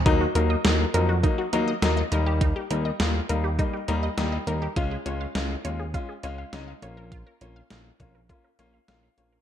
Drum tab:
HH |xxxxxxxx|xxxxxxxx|xxxxxxxx|xxxxxxxx|
SD |--o---o-|--o---o-|--o---o-|--o---o-|
T2 |--------|--------|--------|---o----|
BD |o---o---|o---o---|o---o---|o--oo---|